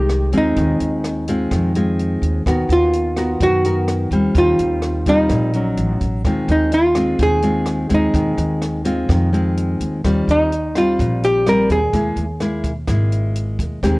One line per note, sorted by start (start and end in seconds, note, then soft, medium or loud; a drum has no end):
0.00 0.29 C2 medium
0.00 0.33 D#3 medium
0.00 0.30 G#3 medium
0.00 0.30 D#4 medium
0.00 0.30 G4 medium
0.00 0.37 G4 medium
0.09 cross-stick medium
0.09 closed hi-hat soft
0.32 0.55 D#2 medium
0.32 1.24 G#3 medium
0.32 1.24 C4 medium
0.32 1.24 F4 medium
0.32 closed hi-hat soft
0.38 1.73 D#4 medium
0.56 0.79 D#2 loud
0.56 1.49 D#3 medium
0.56 kick medium
0.56 closed hi-hat medium
0.80 1.47 D#2 medium
0.80 closed hi-hat soft
1.04 cross-stick medium
1.04 closed hi-hat soft
1.28 1.72 G#3 medium
1.28 1.72 C4 medium
1.28 1.72 F4 medium
1.28 closed hi-hat medium
1.51 2.19 F2 medium
1.51 2.44 D#3 medium
1.51 kick medium
1.51 cross-stick medium
1.51 closed hi-hat medium
1.75 2.43 G#3 medium
1.75 2.43 C4 soft
1.75 2.43 F4 medium
1.75 closed hi-hat soft
1.99 closed hi-hat soft
2.22 2.44 D#2 medium
2.22 closed hi-hat soft
2.46 2.68 D#2 medium
2.46 3.39 D#3 medium
2.46 2.93 B3 medium
2.46 2.94 F#4 medium
2.46 2.94 A#4 medium
2.46 kick medium
2.46 cross-stick medium
2.46 closed hi-hat medium
2.69 3.36 D#2 medium
2.69 3.43 F4 loud
2.69 closed hi-hat soft
2.93 closed hi-hat soft
3.16 3.61 B3 medium
3.16 3.61 F#4 medium
3.16 3.61 A#4 medium
3.16 cross-stick medium
3.16 closed hi-hat soft
3.40 4.08 F#2 medium
3.40 4.33 D#3 medium
3.40 4.09 F#4 loud
3.40 kick medium
3.40 closed hi-hat medium
3.64 4.08 B3 medium
3.64 4.09 F#4 medium
3.64 4.09 A#4 medium
3.64 closed hi-hat soft
3.88 cross-stick medium
3.88 closed hi-hat soft
4.11 4.33 D#2 medium
4.11 5.03 G3 medium
4.11 5.03 C4 medium
4.11 5.03 F4 medium
4.11 closed hi-hat soft
4.35 4.57 D#2 loud
4.35 5.28 D#3 medium
4.35 5.09 F4 medium
4.35 kick medium
4.35 closed hi-hat medium
4.59 5.26 D#2 loud
4.59 closed hi-hat soft
4.82 cross-stick medium
4.82 closed hi-hat soft
5.06 5.51 G3 medium
5.06 5.51 C4 medium
5.06 5.99 D#4 medium
5.06 5.51 F4 medium
5.06 kick medium
5.06 closed hi-hat soft
5.29 5.74 A#1 medium
5.29 5.76 A#2 medium
5.29 kick soft
5.29 cross-stick medium
5.29 closed hi-hat medium
5.53 6.21 F#3 medium
5.53 6.22 C#4 soft
5.53 closed hi-hat soft
5.77 5.99 A1 medium
5.77 closed hi-hat soft
6.01 6.23 A1 medium
6.01 kick soft
6.01 closed hi-hat soft
6.24 6.47 D#2 medium
6.24 7.18 D#3 medium
6.24 6.72 G#3 medium
6.24 6.72 C4 soft
6.24 6.73 F4 medium
6.24 kick medium
6.24 cross-stick medium
6.24 closed hi-hat soft
6.48 7.16 D#2 medium
6.48 6.74 D#4 medium
6.48 closed hi-hat soft
6.72 7.22 F4 medium
6.72 closed hi-hat soft
6.95 7.39 G#3 medium
6.95 7.40 C4 medium
6.95 7.40 F4 medium
6.95 cross-stick medium
6.95 closed hi-hat soft
7.19 7.86 D#2 medium
7.19 8.12 D#3 medium
7.19 7.94 G#4 loud
7.19 kick medium
7.19 closed hi-hat medium
7.42 7.87 G#3 medium
7.42 7.87 C4 medium
7.42 7.87 F4 medium
7.42 closed hi-hat soft
7.66 cross-stick medium
7.66 closed hi-hat soft
7.89 8.13 D#2 medium
7.89 8.81 G#3 medium
7.89 8.81 C4 medium
7.89 8.82 F4 medium
7.89 closed hi-hat soft
7.94 9.31 D#4 medium
8.14 8.36 D#2 medium
8.14 9.07 D#3 medium
8.14 kick medium
8.14 closed hi-hat medium
8.37 9.05 D#2 loud
8.37 closed hi-hat soft
8.62 cross-stick soft
8.62 closed hi-hat soft
8.85 9.29 G#3 medium
8.85 9.29 C4 medium
8.85 9.29 F4 medium
8.85 closed hi-hat medium
9.09 9.76 F2 medium
9.09 10.01 D#3 medium
9.09 kick medium
9.09 cross-stick medium
9.09 closed hi-hat medium
9.33 10.00 G#3 medium
9.33 10.00 C4 medium
9.33 10.00 F4 medium
9.33 closed hi-hat soft
9.57 closed hi-hat soft
9.80 10.02 D#2 medium
9.80 closed hi-hat soft
10.04 10.26 D#2 medium
10.04 10.96 D#3 medium
10.04 10.51 G3 medium
10.04 10.51 C4 medium
10.04 10.52 F4 medium
10.04 kick medium
10.04 cross-stick medium
10.04 closed hi-hat medium
10.27 10.94 D#2 medium
10.27 10.77 D#4 medium
10.27 closed hi-hat soft
10.52 closed hi-hat soft
10.75 11.43 G3 medium
10.75 11.43 C4 medium
10.75 11.43 F4 medium
10.75 11.25 F4 medium
10.75 cross-stick medium
10.75 closed hi-hat soft
10.99 11.66 A#1 medium
10.99 11.91 A#2 medium
10.99 kick medium
10.99 closed hi-hat medium
11.23 11.48 G4 medium
11.23 closed hi-hat soft
11.46 11.78 G3 medium
11.46 11.78 C4 medium
11.46 11.79 F4 medium
11.46 11.71 A#4 medium
11.46 cross-stick medium
11.46 closed hi-hat soft
11.69 11.91 D#2 medium
11.69 13.32 G#4 medium
11.69 closed hi-hat soft
11.93 12.15 D#2 medium
11.93 12.24 G#3 medium
11.93 12.24 A#3 medium
11.93 12.24 E4 medium
11.93 kick medium
11.93 closed hi-hat medium
12.16 12.83 D#2 medium
12.16 closed hi-hat soft
12.40 12.71 G#3 medium
12.40 12.71 A#3 medium
12.40 12.71 E4 medium
12.40 cross-stick medium
12.40 closed hi-hat soft
12.64 kick medium
12.64 closed hi-hat soft
12.87 13.55 G#1 medium
12.87 13.79 G#3 medium
12.87 13.79 A#3 medium
12.87 13.79 E4 medium
12.87 kick medium
12.87 cross-stick medium
12.87 closed hi-hat medium
13.12 closed hi-hat soft
13.35 closed hi-hat soft
13.59 13.81 D#2 medium
13.59 kick medium
13.59 closed hi-hat soft
13.83 13.99 D#2 medium
13.83 13.99 D#3 medium
13.83 13.99 G#3 medium
13.83 13.99 C4 medium
13.83 13.99 G4 medium
13.83 kick medium
13.83 cross-stick medium
13.83 closed hi-hat medium